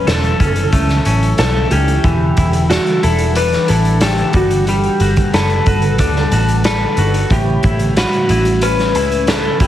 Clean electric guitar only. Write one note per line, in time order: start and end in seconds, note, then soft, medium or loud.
0.00 2.04 F#2 medium
0.00 0.40 C#4 medium
0.07 1.38 A4 medium
0.40 1.05 C#4 medium
0.73 3.36 A3 medium
1.06 1.71 C#4 soft
1.39 2.70 A4 medium
1.72 2.11 C#4 medium
2.04 4.34 E3 medium
2.38 3.02 E4 medium
2.71 4.02 A4 medium
3.03 3.68 E4 medium
3.36 6.00 D4 medium
3.69 4.41 E4 medium
4.02 4.71 A4 medium
4.35 4.68 G3 medium
4.68 7.34 G3 medium
5.01 5.66 F#4 medium
5.34 6.65 B4 medium
5.68 6.32 F#4 medium
6.00 7.38 D4 medium
6.33 6.97 F#4 medium
6.65 7.97 B4 medium
6.99 7.37 F#4 medium
7.31 9.67 A2 medium
7.65 8.30 E4 medium
7.98 9.27 B4 medium
8.30 8.96 E4 medium
8.63 9.67 C#4 medium
8.96 9.61 E4 medium
9.28 9.67 B4 medium
9.61 9.67 E4 medium